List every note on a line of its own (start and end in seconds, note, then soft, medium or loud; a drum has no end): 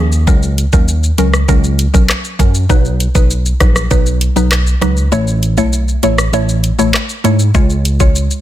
0.00 0.27 D#2 loud
0.12 shaker medium
0.27 0.64 C#2 loud
0.27 0.40 F#3 medium
0.27 0.40 C#4 medium
0.27 0.40 A#4 loud
0.27 kick loud
0.27 shaker medium
0.43 shaker soft
0.58 closed hi-hat medium
0.58 shaker medium
0.73 1.10 D#2 medium
0.73 0.85 F#3 medium
0.73 0.85 C#4 medium
0.73 0.86 A#4 medium
0.73 kick medium
0.73 shaker medium
0.88 shaker medium
1.03 shaker medium
1.18 1.43 C#2 medium
1.18 1.31 F#3 medium
1.18 1.31 C#4 medium
1.18 1.31 A#4 medium
1.18 closed hi-hat medium
1.18 shaker soft
1.34 cross-stick medium
1.34 shaker medium
1.48 1.86 C#2 loud
1.48 1.90 F#3 medium
1.48 1.91 C#4 medium
1.48 1.91 A#4 loud
1.48 kick medium
1.48 shaker medium
1.64 shaker medium
1.79 closed hi-hat medium
1.79 shaker medium
1.94 2.07 B1 medium
1.94 2.06 F#3 medium
1.94 2.06 C#4 medium
1.94 2.07 A#4 medium
1.94 kick medium
1.94 shaker medium
2.09 cross-stick medium
2.09 clap medium
2.09 shaker medium
2.24 shaker soft
2.39 2.64 F#2 medium
2.39 2.52 F#3 medium
2.39 2.52 C#4 medium
2.39 2.52 A#4 medium
2.39 kick loud
2.39 closed hi-hat medium
2.39 shaker medium
2.55 shaker medium
2.69 3.07 B1 loud
2.69 2.82 F#3 loud
2.69 2.82 D#4 medium
2.69 2.82 B4 loud
2.69 kick loud
2.69 shaker medium
2.85 shaker soft
3.00 closed hi-hat medium
3.00 shaker medium
3.15 3.52 B1 medium
3.15 3.28 F#3 medium
3.15 3.28 D#4 medium
3.15 3.28 B4 medium
3.15 kick medium
3.15 shaker medium
3.31 shaker medium
3.46 shaker medium
3.60 3.85 A#1 medium
3.60 3.73 F#3 medium
3.60 3.73 D#4 medium
3.60 3.73 B4 medium
3.60 kick medium
3.60 cross-stick medium
3.60 closed hi-hat medium
3.60 shaker soft
3.76 cross-stick medium
3.76 shaker medium
3.91 4.28 B1 loud
3.91 4.33 F#3 loud
3.91 4.33 D#4 medium
3.91 4.33 B4 loud
3.91 kick loud
3.91 shaker medium
4.06 shaker medium
4.21 closed hi-hat medium
4.21 shaker medium
4.36 4.73 B1 medium
4.36 4.49 F#3 medium
4.36 4.49 D#4 medium
4.36 4.49 B4 medium
4.36 shaker medium
4.52 cross-stick medium
4.52 clap medium
4.52 shaker medium
4.67 shaker soft
4.81 5.07 C#2 medium
4.81 4.94 F#3 medium
4.81 4.94 D#4 medium
4.81 4.94 B4 medium
4.81 cross-stick loud
4.81 closed hi-hat medium
4.81 shaker medium
4.97 shaker medium
5.12 5.58 A1 loud
5.12 5.25 A3 medium
5.12 5.25 E4 medium
5.12 5.25 C#5 loud
5.12 shaker medium
5.27 shaker soft
5.43 closed hi-hat medium
5.43 shaker medium
5.57 5.95 B1 medium
5.57 5.70 A3 medium
5.57 5.70 E4 medium
5.57 5.70 C#5 medium
5.57 shaker medium
5.73 shaker medium
5.88 shaker medium
6.03 6.28 A1 medium
6.03 6.16 A3 medium
6.03 6.16 E4 medium
6.03 6.16 C#5 medium
6.03 closed hi-hat medium
6.03 shaker soft
6.18 cross-stick loud
6.18 shaker medium
6.33 6.70 A1 loud
6.33 6.75 A3 loud
6.33 6.75 E4 medium
6.33 6.76 C#5 loud
6.33 shaker medium
6.49 shaker medium
6.64 closed hi-hat medium
6.64 shaker medium
6.79 6.91 A1 medium
6.79 6.91 A3 medium
6.79 6.91 E4 medium
6.79 6.92 C#5 medium
6.79 shaker medium
6.94 cross-stick medium
6.94 clap medium
6.94 shaker medium
7.09 shaker soft
7.24 7.49 G#2 loud
7.24 7.37 A3 medium
7.24 7.37 E4 medium
7.24 7.37 C#5 medium
7.24 closed hi-hat medium
7.24 shaker medium
7.39 shaker medium
7.55 8.27 C#2 loud
7.55 7.67 G#3 medium
7.55 7.67 F4 medium
7.55 7.67 C#5 loud
7.55 kick loud
7.55 shaker medium
7.70 shaker soft
7.85 closed hi-hat medium
7.85 shaker medium
8.00 8.41 G#3 medium
8.00 8.41 F4 medium
8.00 8.41 C#5 medium
8.00 kick medium
8.00 shaker medium
8.16 shaker medium
8.31 shaker medium